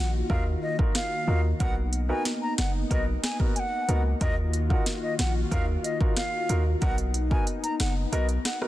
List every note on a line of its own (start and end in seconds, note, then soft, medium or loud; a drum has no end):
0.00 0.23 A#1 medium
0.00 1.58 D#3 medium
0.00 1.58 A#3 medium
0.00 1.58 F4 medium
0.00 1.58 F#4 medium
0.00 0.11 F#5 medium
0.30 0.56 D#2 loud
0.30 0.42 D#4 medium
0.30 0.43 F4 medium
0.30 0.43 F#4 medium
0.30 0.43 A#4 loud
0.30 0.44 F5 medium
0.30 kick medium
0.62 0.77 D#5 medium
0.79 0.91 D#4 medium
0.79 0.91 F4 medium
0.79 0.92 F#4 medium
0.79 0.92 A#4 medium
0.79 kick loud
0.95 1.41 F5 medium
0.95 cross-stick medium
0.95 snare loud
1.27 1.53 D#2 medium
1.27 1.40 D#4 medium
1.27 1.40 F4 medium
1.27 1.40 F#4 medium
1.27 1.41 A#4 medium
1.60 2.12 B1 loud
1.60 8.68 A#3 medium
1.60 1.73 B3 medium
1.60 4.19 B3 medium
1.60 4.18 D#4 medium
1.60 1.73 D#4 medium
1.60 1.73 F#4 medium
1.60 1.73 A#4 loud
1.60 1.74 F#5 loud
1.60 kick loud
1.60 closed hi-hat medium
1.93 closed hi-hat medium
2.09 2.22 B3 medium
2.09 2.22 D#4 medium
2.09 2.22 F#4 medium
2.09 2.22 A#4 medium
2.09 2.23 G#5 medium
2.25 snare medium
2.25 closed hi-hat medium
2.42 2.56 A#5 medium
2.58 2.84 F#1 medium
2.58 2.72 F#5 medium
2.58 cross-stick medium
2.58 snare loud
2.58 closed hi-hat medium
2.90 3.17 B1 loud
2.90 3.03 B3 medium
2.90 3.03 D#4 medium
2.90 3.04 F#4 medium
2.90 3.04 A#4 loud
2.90 3.05 D#5 medium
2.90 kick medium
2.90 closed hi-hat medium
3.23 3.38 G#5 medium
3.23 cross-stick loud
3.23 snare loud
3.23 closed hi-hat medium
3.39 3.52 B3 medium
3.39 3.52 D#4 medium
3.39 3.52 F#4 medium
3.39 3.52 A#4 medium
3.39 kick loud
3.56 4.02 F#5 medium
3.56 3.61 G#5 medium
3.56 closed hi-hat medium
3.88 4.14 C#2 medium
3.88 4.01 B3 medium
3.88 4.01 D#4 medium
3.88 4.01 F#4 medium
3.88 4.01 A#4 medium
3.88 closed hi-hat medium
4.21 4.73 D#2 loud
4.21 6.79 D#3 medium
4.21 4.34 D#4 medium
4.21 4.34 F4 medium
4.21 6.80 F4 medium
4.21 4.34 F#4 medium
4.21 6.80 F#4 loud
4.21 4.34 A#4 loud
4.21 4.35 D#5 loud
4.21 kick loud
4.21 closed hi-hat medium
4.53 closed hi-hat medium
4.70 4.83 D#4 medium
4.70 4.83 F4 medium
4.70 4.83 F#4 medium
4.70 4.83 A#4 medium
4.70 4.84 F#5 medium
4.70 kick medium
4.86 snare medium
4.86 closed hi-hat medium
5.02 5.17 D#5 medium
5.19 5.45 A#1 medium
5.19 5.33 F#5 medium
5.19 cross-stick medium
5.19 snare loud
5.19 closed hi-hat medium
5.51 5.77 D#2 loud
5.51 5.64 D#4 medium
5.51 5.64 F4 medium
5.51 5.64 F#4 medium
5.51 5.64 A#4 loud
5.51 5.65 F5 loud
5.51 kick medium
5.51 closed hi-hat medium
5.84 5.98 D#5 medium
5.84 closed hi-hat medium
6.00 6.13 D#4 medium
6.00 6.13 F4 medium
6.00 6.13 F#4 medium
6.00 6.13 A#4 medium
6.00 kick loud
6.17 6.63 F5 medium
6.17 cross-stick medium
6.17 snare loud
6.17 closed hi-hat medium
6.49 6.75 D#2 loud
6.49 6.62 D#4 medium
6.49 6.62 F4 medium
6.49 6.62 F#4 medium
6.49 6.62 A#4 medium
6.49 closed hi-hat medium
6.82 7.34 B1 loud
6.82 6.95 B3 medium
6.82 8.68 B3 medium
6.82 6.95 D#4 medium
6.82 8.68 D#4 medium
6.82 6.95 F#4 medium
6.82 6.95 A#4 loud
6.82 6.96 F#5 loud
6.82 kick loud
6.82 closed hi-hat medium
6.98 closed hi-hat medium
7.14 closed hi-hat medium
7.31 7.43 B3 medium
7.31 7.44 D#4 medium
7.31 7.44 F#4 medium
7.31 7.44 A#4 medium
7.31 7.45 G#5 medium
7.31 kick medium
7.47 closed hi-hat medium
7.64 7.78 A#5 medium
7.64 closed hi-hat medium
7.80 8.06 F#1 medium
7.80 7.94 F#5 medium
7.80 cross-stick loud
7.80 snare loud
7.80 closed hi-hat medium
8.12 8.38 B1 loud
8.12 8.25 B3 medium
8.12 8.25 D#4 medium
8.12 8.25 F#4 medium
8.12 8.25 A#4 loud
8.12 8.27 D#5 medium
8.12 closed hi-hat medium
8.29 closed hi-hat medium
8.45 8.59 F#5 medium
8.45 cross-stick loud
8.45 snare loud
8.45 closed hi-hat medium
8.61 8.68 B3 medium
8.61 8.68 D#4 medium
8.61 8.68 F#4 medium
8.61 8.68 A#4 medium
8.61 cross-stick medium